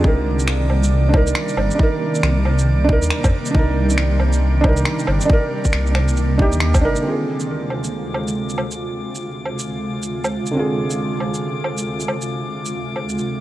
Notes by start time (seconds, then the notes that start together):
Already playing: D5
0.00 C2 C3 D#3 G3 A#3 D4 D#4
0.04 A#4, kick
0.39 shaker
0.47 C2, finger snap
0.70 low woodblock
0.83 shaker
1.09 D4
1.13 D#4 A#4, kick, low woodblock
1.27 shaker
1.35 finger snap
1.49 shaker
1.57 G1, low woodblock
1.71 shaker
1.75 D4 D#4
1.79 A#4, kick
2.15 shaker
2.23 C2, finger snap
2.45 low woodblock
2.59 shaker
2.84 D4 D#4
2.89 A#4, kick
3.02 D#2, shaker
3.10 finger snap
3.24 F2, kick, low woodblock, shaker
3.46 shaker
3.51 C2 D4, kick
3.55 D#4 A#4
3.90 shaker
3.98 C2, finger snap
4.20 low woodblock
4.33 shaker
4.61 D4 D#4, kick, low woodblock
4.69 A#4
4.77 shaker
4.85 finger snap
4.99 shaker
5.07 G1, low woodblock
5.21 shaker
5.25 D4 D#4
5.30 A#4, kick
5.65 kick, shaker
5.73 C2, finger snap
5.86 shaker
5.95 finger snap, low woodblock
6.08 shaker
6.17 shaker
6.38 D4 D#4, kick
6.42 G4
6.52 D#2, shaker
6.60 finger snap
6.74 kick, low woodblock, shaker
6.81 G1 D4 D#4 A#4
6.96 shaker
7.01 D2 C3 D3 G#3 C4 F4
7.06 F4 G#4 D6
7.40 shaker
7.70 low woodblock
7.84 shaker
8.14 low woodblock
8.28 shaker
8.49 shaker
8.58 low woodblock
8.71 shaker
9.15 shaker
9.45 low woodblock
9.59 shaker
10.03 shaker
10.24 low woodblock, shaker
10.46 shaker
10.51 D3 C4
10.57 F4 G#4
10.90 shaker
11.20 low woodblock
11.34 shaker
11.64 low woodblock
11.78 shaker
12.00 shaker
12.08 low woodblock
12.22 shaker
12.66 shaker
12.96 low woodblock
13.09 shaker
13.18 shaker